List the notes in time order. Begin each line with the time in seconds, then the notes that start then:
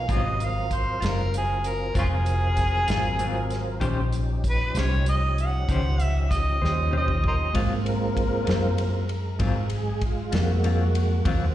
Already playing: F5
0.08 G#1 G#2 F#3 G3 C4 C#4 F4 F#4 B4, kick, closed hi-hat
0.13 D#5
0.40 F#3 C4 F4 A#4, closed hi-hat
0.45 F5
0.71 C5, kick, closed hi-hat
1.00 F#1 F#3 C4 F4, closed hi-hat
1.05 A#4, snare
1.34 G#4, closed hi-hat
1.64 A#4, closed hi-hat
1.94 F1 G#2 F#3 C4 F4, kick, closed hi-hat
1.99 C#4 F4 G#4
2.26 closed hi-hat
2.57 kick, snare, closed hi-hat
2.87 G#1 F#3 C4 F4, snare, closed hi-hat
3.18 G#2 F#3 C4 F4, closed hi-hat
3.50 snare, closed hi-hat
3.80 A#1 D#3 F3 C#4 D#4 G4 C5, kick, closed hi-hat
4.13 closed hi-hat
4.44 kick, closed hi-hat
4.49 B4
4.75 C2 C#4 G4 C5, snare, closed hi-hat
4.79 C#5
5.06 D#5, closed hi-hat
5.38 F#5, closed hi-hat
5.69 C#2 D#3 C#4 G4 C5, kick, closed hi-hat
6.00 E5, closed hi-hat
6.31 D#5, kick, snare, closed hi-hat
6.62 D#2 C#4 G4 C5 D#5, snare
6.91 D#3 C#4 G4 C5, mid tom
6.97 D#5
7.08 kick
7.24 A#4 C5 D#5, kick
7.53 G#2 F#3 G#3 A#3 C4 F4, kick, ride
7.85 A4 A#4, ride
8.17 kick, ride
8.45 F#2 F#3 C4 F4, ride
8.49 snare
8.78 F#3 A#3 C4 F4, ride
9.09 ride
9.39 G#2 F#3 C4 F4, kick, ride
9.70 ride
9.75 G#4
10.01 kick, ride
10.06 F4
10.32 F2 F#3 A#3 C4 F4 F#4, snare, ride
10.63 G#2 F#3 C4 F4, ride
10.95 ride
11.25 D#2 G#2 F#3 A#3 C4 F4, kick, ride